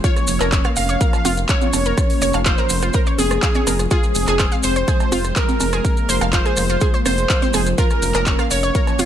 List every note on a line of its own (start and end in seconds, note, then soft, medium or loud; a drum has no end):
0.00 3.87 F3 medium
0.00 0.10 F4 medium
0.00 0.67 C#5 loud
0.00 0.10 F5 medium
0.00 closed hi-hat medium
0.04 3.87 A#3 medium
0.04 3.87 C#4 medium
0.04 0.67 C#5 loud
0.04 kick loud
0.04 maracas medium
0.16 cross-stick soft
0.16 closed hi-hat soft
0.16 maracas soft
0.27 0.39 F1 loud
0.27 open hi-hat loud
0.27 maracas loud
0.40 0.61 F1 loud
0.40 0.46 A#4 loud
0.40 0.46 A#5 medium
0.40 clap soft
0.40 closed hi-hat medium
0.40 cowbell loud
0.40 maracas soft
0.52 0.58 C#5 medium
0.52 0.58 C#6 medium
0.52 kick loud
0.52 clap loud
0.52 closed hi-hat medium
0.52 maracas medium
0.64 0.68 F5 medium
0.64 0.68 F6 medium
0.64 cross-stick medium
0.64 closed hi-hat soft
0.64 maracas soft
0.76 0.97 F1 loud
0.76 1.40 F5 loud
0.76 open hi-hat loud
0.76 maracas loud
0.89 0.97 C#5 medium
0.89 0.97 C#6 medium
0.89 closed hi-hat medium
0.89 maracas soft
1.01 1.07 A#4 medium
1.01 1.07 A#5 medium
1.01 kick loud
1.01 closed hi-hat medium
1.01 maracas medium
1.13 cross-stick soft
1.13 closed hi-hat soft
1.13 cowbell loud
1.13 maracas soft
1.25 1.46 F1 loud
1.25 1.31 F4 loud
1.25 1.31 F5 medium
1.25 open hi-hat loud
1.25 high conga medium
1.25 maracas loud
1.37 closed hi-hat medium
1.37 maracas soft
1.49 2.36 C#5 loud
1.49 2.37 C#5 medium
1.49 kick loud
1.49 cross-stick soft
1.49 clap loud
1.49 closed hi-hat medium
1.49 maracas medium
1.61 closed hi-hat soft
1.61 high conga medium
1.61 maracas soft
1.73 1.94 F1 medium
1.73 open hi-hat loud
1.73 cowbell medium
1.73 high conga medium
1.73 maracas loud
1.85 1.91 A#4 medium
1.85 1.91 A#5 medium
1.85 closed hi-hat medium
1.85 maracas soft
1.98 kick loud
1.98 cross-stick medium
1.98 closed hi-hat medium
1.98 maracas medium
2.10 open hi-hat medium
2.10 maracas soft
2.22 2.32 F1 loud
2.22 2.28 C#5 loud
2.22 2.28 C#6 medium
2.22 open hi-hat loud
2.22 maracas loud
2.33 2.55 F1 loud
2.33 2.38 F5 medium
2.33 2.38 F6 medium
2.33 closed hi-hat medium
2.33 cowbell loud
2.33 maracas soft
2.46 2.49 F4 medium
2.46 3.09 C5 medium
2.46 3.09 C5 loud
2.46 2.49 F5 medium
2.46 kick loud
2.46 cross-stick soft
2.46 clap loud
2.46 closed hi-hat medium
2.46 maracas medium
2.58 2.64 A#4 medium
2.58 2.64 A#5 medium
2.58 closed hi-hat soft
2.58 maracas soft
2.69 2.91 F1 medium
2.69 open hi-hat loud
2.69 maracas loud
2.82 2.88 F4 medium
2.82 2.88 F5 medium
2.82 cross-stick soft
2.82 closed hi-hat medium
2.82 maracas soft
2.93 3.00 A#4 loud
2.93 3.00 A#5 medium
2.93 kick loud
2.93 closed hi-hat soft
2.93 maracas medium
3.06 3.12 C#5 medium
3.06 3.12 C#6 medium
3.06 closed hi-hat soft
3.06 maracas soft
3.18 3.39 F1 loud
3.18 3.82 G#4 loud
3.18 open hi-hat loud
3.18 high conga medium
3.18 maracas medium
3.31 cross-stick medium
3.31 closed hi-hat medium
3.31 maracas soft
3.42 3.46 F5 medium
3.42 3.46 F6 medium
3.42 kick loud
3.42 clap loud
3.42 closed hi-hat medium
3.42 maracas medium
3.55 3.61 C#5 medium
3.55 3.61 C#6 medium
3.55 closed hi-hat soft
3.55 high conga medium
3.55 maracas soft
3.67 3.87 F1 medium
3.67 3.76 A#4 medium
3.67 3.76 A#5 medium
3.67 open hi-hat loud
3.67 cowbell medium
3.67 high conga medium
3.67 maracas medium
3.79 cross-stick soft
3.79 closed hi-hat medium
3.79 maracas soft
3.91 9.05 F3 medium
3.91 7.74 G#3 medium
3.91 5.83 C4 medium
3.91 3.97 F4 medium
3.91 4.54 G#4 loud
3.91 3.97 F5 medium
3.91 kick loud
3.91 cross-stick soft
3.91 closed hi-hat medium
3.91 maracas medium
4.03 closed hi-hat soft
4.03 maracas soft
4.15 4.26 F1 loud
4.15 open hi-hat loud
4.15 maracas medium
4.27 4.48 F1 loud
4.27 4.33 G#4 loud
4.27 4.33 G#5 medium
4.27 clap soft
4.27 closed hi-hat medium
4.27 cowbell medium
4.27 maracas soft
4.39 4.45 C5 medium
4.39 4.45 C6 medium
4.39 kick loud
4.39 cross-stick medium
4.39 clap loud
4.39 closed hi-hat medium
4.39 maracas soft
4.52 4.55 F5 medium
4.52 4.55 F6 medium
4.52 closed hi-hat soft
4.52 maracas soft
4.63 4.84 F1 medium
4.63 5.38 C5 loud
4.63 5.36 C5 medium
4.63 open hi-hat loud
4.63 maracas medium
4.76 4.84 C5 medium
4.76 4.84 C6 medium
4.76 closed hi-hat medium
4.76 maracas soft
4.88 4.94 G#4 medium
4.88 4.94 G#5 medium
4.88 kick loud
4.88 cross-stick soft
4.88 closed hi-hat medium
4.88 maracas medium
5.00 closed hi-hat soft
5.00 cowbell medium
5.00 maracas soft
5.12 5.33 F1 loud
5.12 5.18 F4 loud
5.12 5.18 F5 medium
5.12 open hi-hat loud
5.12 high conga medium
5.12 maracas medium
5.24 cross-stick soft
5.24 closed hi-hat medium
5.24 maracas soft
5.36 6.24 A#4 loud
5.36 kick loud
5.36 clap loud
5.36 closed hi-hat soft
5.36 maracas medium
5.49 closed hi-hat soft
5.49 high conga medium
5.49 maracas soft
5.60 5.81 F1 medium
5.60 open hi-hat loud
5.60 cowbell medium
5.60 high conga medium
5.60 maracas medium
5.73 5.78 G#4 medium
5.73 5.78 G#5 medium
5.73 cross-stick medium
5.73 closed hi-hat medium
5.73 maracas soft
5.85 7.76 A#3 medium
5.85 kick loud
5.85 closed hi-hat medium
5.85 maracas medium
5.97 closed hi-hat soft
5.97 maracas soft
6.09 6.19 F1 loud
6.09 6.15 C5 loud
6.09 6.15 C6 medium
6.09 open hi-hat loud
6.09 maracas medium
6.21 6.42 F1 loud
6.21 6.25 F5 medium
6.21 6.25 F6 medium
6.21 cross-stick soft
6.21 closed hi-hat medium
6.21 cowbell medium
6.21 maracas soft
6.33 6.37 F4 medium
6.33 6.96 C5 loud
6.33 6.96 C5 medium
6.33 6.37 F5 medium
6.33 kick loud
6.33 clap loud
6.33 closed hi-hat medium
6.33 maracas medium
6.45 6.51 G#4 medium
6.45 6.51 G#5 medium
6.45 closed hi-hat soft
6.45 maracas soft
6.57 6.78 F1 medium
6.57 cross-stick soft
6.57 open hi-hat loud
6.57 maracas medium
6.69 6.75 F4 medium
6.69 6.75 F5 medium
6.69 closed hi-hat medium
6.69 maracas soft
6.81 6.87 G#4 loud
6.81 6.87 G#5 medium
6.81 kick loud
6.81 closed hi-hat medium
6.81 maracas soft
6.94 6.99 C5 medium
6.94 6.99 C6 medium
6.94 closed hi-hat soft
6.94 maracas soft
7.06 7.26 F1 loud
7.06 7.69 C5 loud
7.06 cross-stick medium
7.06 open hi-hat loud
7.06 high conga medium
7.06 maracas medium
7.18 closed hi-hat medium
7.18 maracas soft
7.29 7.33 F5 medium
7.29 7.33 F6 medium
7.29 kick loud
7.29 clap loud
7.29 closed hi-hat medium
7.29 maracas soft
7.42 7.48 C5 medium
7.42 7.48 C6 medium
7.42 closed hi-hat soft
7.42 high conga loud
7.42 maracas soft
7.53 7.75 F1 medium
7.53 7.63 G#4 medium
7.53 7.63 G#5 medium
7.53 cross-stick soft
7.53 open hi-hat loud
7.53 cowbell medium
7.53 high conga medium
7.53 maracas medium
7.66 closed hi-hat medium
7.66 maracas soft
7.78 9.05 A#3 medium
7.78 9.05 C#4 medium
7.78 7.84 F4 medium
7.78 8.41 A#4 loud
7.78 7.84 F5 medium
7.78 kick loud
7.78 closed hi-hat medium
7.78 maracas medium
7.90 cross-stick soft
7.90 closed hi-hat soft
7.90 maracas soft
8.02 8.13 F1 loud
8.02 open hi-hat loud
8.02 maracas medium
8.14 8.35 F1 loud
8.14 8.20 A#4 loud
8.14 8.20 A#5 medium
8.14 clap soft
8.14 closed hi-hat medium
8.14 cowbell medium
8.14 maracas soft
8.26 8.32 C#5 medium
8.26 8.32 C#6 medium
8.26 kick loud
8.26 clap loud
8.26 closed hi-hat medium
8.26 maracas medium
8.39 8.42 F5 medium
8.39 8.42 F6 medium
8.39 cross-stick medium
8.39 closed hi-hat soft
8.39 maracas soft
8.51 8.71 F1 loud
8.51 9.05 C#5 loud
8.51 open hi-hat loud
8.51 maracas medium
8.63 8.72 C#5 medium
8.63 8.72 C#6 medium
8.63 closed hi-hat medium
8.63 maracas soft
8.75 8.81 A#4 medium
8.75 8.81 A#5 medium
8.75 kick loud
8.75 closed hi-hat medium
8.75 maracas soft
8.87 cross-stick soft
8.87 closed hi-hat soft
8.87 cowbell medium
8.87 maracas soft
8.99 9.05 F1 medium
8.99 9.05 F4 loud
8.99 9.05 F5 medium
8.99 open hi-hat loud
8.99 high conga loud
8.99 maracas medium